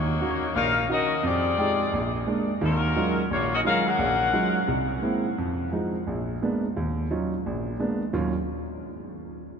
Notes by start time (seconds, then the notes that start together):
Already playing: D#2 D#3 A#3 D#4 F#4 C#5
0.21 C#4 D#4 F#4
0.55 A#1 D#4 A#4 C#5 F5
0.89 C#4 D#4 F#4 A#4 D#5
1.23 F2 C4 G4 G#4 D5
1.58 G#3 D#4 F4 G4
1.93 A#1
2.27 G#3 A#3 D4
2.61 D#2 D#3 F#3 C#4 F4 A#4
2.96 F#3 G#3 C#4 D#4 F4
3.31 A#1 A#3 F4 F#4 C#5
3.54 C#4 F#4 A#4 D#5
3.65 F#3 G#3 C#4 D#4 F4 F#4 A#4 F5
3.87 C#4 A#4 F5 F#5
3.99 A#1
4.33 F#3 G#3 C#4 D#4 F4
4.68 C2
5.02 G#3 A#3 C4 E4
5.38 F2
5.72 F3 G#3 D#4
6.07 A#1
6.42 G#3 A#3 B3 D4
6.76 D#2
7.11 F#3 C#4 D#4 F4
7.46 A#1
7.80 G#3 A#3 B3 D4
8.13 D#2 D#3 F#3 C#4 F4